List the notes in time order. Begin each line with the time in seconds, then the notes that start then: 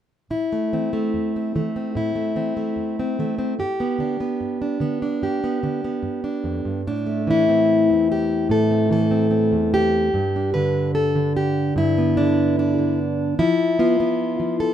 0.30 A2 E4
0.53 A3
0.73 E3 C4
0.93 A3
1.14 E2
1.36 C4
1.56 E3 A3
1.76 C4
1.95 A2 E4
2.16 A3
2.36 E3 C4
2.57 A3
2.76 E2
2.99 C4
3.19 E3 A3
3.39 C4
3.59 G2 G4
3.80 B3
3.98 D3 D4
4.20 B3
4.40 G2
4.62 D4
4.80 D3 B3
5.02 D4
5.22 G2 G4
5.44 B3
5.63 D3 D4
5.84 B3
6.03 G2
6.24 D4
6.44 F2
6.65 G2
6.87 A2 D4
7.07 A3
7.27 E3 E4
7.49 C4
7.90 E2
8.12 G4
8.49 A2 A4
8.71 C4
8.90 E3 A4
9.11 C4
9.31 C4
9.52 E2
9.74 G4
10.14 G2
10.36 D4
10.54 D3 B4
10.95 A4
11.15 D3
11.37 G4
11.76 G2 E4
11.98 B3
12.17 D3 D4
12.59 D4
12.79 D3
13.39 F3 E4
13.79 B3 F4
14.00 B3
14.40 F3
14.60 A4